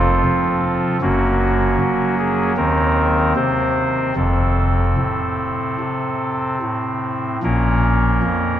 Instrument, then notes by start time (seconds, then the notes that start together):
pipe organ
Already playing: F1 F2 C4 F4 A4
0.25 F3
1.02 F#1 F#2 A#3 C#4 F#4
1.80 F#3
2.19 G#4
2.57 D#2 D#3 C4 A#4
3.36 C3 C5
4.16 F1 F2 C4 A4
4.98 A2
5.80 C3
6.62 A2
7.43 A#1 A#2 A#3 C#4 A#4
8.23 F2